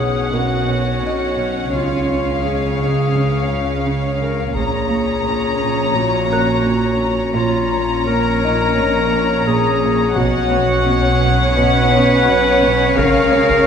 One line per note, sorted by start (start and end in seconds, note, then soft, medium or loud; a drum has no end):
0.00 1.70 B1 medium
0.00 1.70 B1 soft
0.00 0.19 B2 soft
0.00 1.70 B2 soft
0.00 4.52 C#4 soft
0.00 0.35 G#4 soft
0.00 4.52 C#5 soft
0.00 1.71 F#5 soft
0.32 0.54 B2 soft
0.32 1.77 F#4 medium
0.32 2.40 A#4 soft
0.68 0.90 B2 soft
1.04 1.25 B2 soft
1.04 3.12 D#4 soft
1.04 3.12 D#5 soft
1.38 1.59 B2 soft
1.74 4.56 C#2 medium
1.74 4.56 C#2 soft
1.74 1.95 C#3 soft
1.74 4.56 C#3 soft
1.74 2.44 F4 soft
1.74 4.52 F5 soft
2.09 2.30 C#4 soft
2.44 2.65 C#3 soft
2.44 3.83 G#4 soft
2.80 3.01 C#3 soft
3.15 3.36 C#3 soft
3.50 3.71 C#3 soft
3.85 4.06 C#3 soft
4.21 4.42 C#3 soft
4.21 4.56 A#4 medium
4.55 7.32 A#1 soft
4.55 7.35 A#1 medium
4.55 4.77 A#2 soft
4.55 7.32 A#2 soft
4.55 7.32 C#4 soft
4.55 5.97 G#4 soft
4.55 7.32 C#5 soft
4.55 7.32 A#5 soft
4.55 taiko soft
4.91 5.12 A#3 soft
5.26 5.47 A#2 soft
5.61 5.82 A#2 soft
5.95 6.17 A#2 soft
5.95 7.34 F#4 medium
6.31 6.52 A#2 soft
6.31 8.40 A#4 soft
6.31 8.40 F#6 soft
6.66 6.87 A#2 soft
7.00 7.21 A#2 soft
7.35 10.13 A#1 soft
7.35 10.13 A#1 medium
7.35 7.57 A#2 medium
7.35 10.13 A#2 soft
7.35 10.13 C#4 soft
7.35 8.08 F4 medium
7.35 10.13 C#5 soft
7.35 10.13 A#5 soft
7.72 7.94 A#3 soft
8.07 8.30 A#2 soft
8.07 9.49 A#4 medium
8.44 8.65 A#2 soft
8.44 10.48 D#4 soft
8.44 10.48 D#5 soft
8.79 9.00 A#2 medium
9.14 9.35 A#2 soft
9.47 9.69 A#2 soft
9.47 10.18 G#4 medium
9.82 10.03 A#2 soft
10.17 12.93 B1 medium
10.17 12.98 B1 medium
10.17 12.94 B2 medium
10.17 10.38 B2 medium
10.17 13.67 C#4 medium
10.17 11.29 F#4 medium
10.17 13.67 C#5 medium
10.17 12.94 F#5 medium
10.17 taiko medium
10.53 10.73 B3 soft
10.87 11.08 B2 soft
11.23 11.44 B2 soft
11.57 11.79 B2 medium
11.57 12.93 B4 loud
11.93 12.14 B2 soft
12.28 12.48 B2 soft
12.63 12.84 B2 medium
12.97 13.67 C#2 medium
12.97 13.67 C#3 medium
12.97 13.19 C#3 medium
12.97 13.67 A#4 loud
12.97 13.67 F5 medium
12.97 taiko medium
13.32 13.53 C#4 medium
13.32 13.67 C#5 medium
13.50 taiko medium